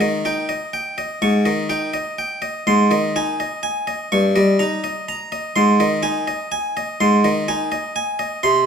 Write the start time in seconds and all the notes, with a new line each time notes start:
0.01 D#3 D#5
0.25 D#4 G5
0.49 D#5
0.73 G5
0.98 D#5
1.22 G#2 C#6
1.45 D#3 D#5
1.70 D#4 G5
1.94 D#5
2.18 G5
2.42 D#5
2.67 G#2 C6
2.91 D#3 D#5
3.16 D#4 G#5
3.40 D#5
3.63 G#5
3.87 D#5
4.12 G2 C#6
4.36 G3 D#5
4.59 D#4 A#5
4.84 D#5
5.09 A#5
5.32 D#5
5.56 G#2 C6
5.80 D#3 D#5
6.03 D#4 G#5
6.28 D#5
6.52 G#5
6.77 D#5
7.00 G#2 C6
7.24 D#3 D#5
7.48 D#4 G#5
7.72 D#5
7.96 G#5
8.19 D#5
8.43 C3 C6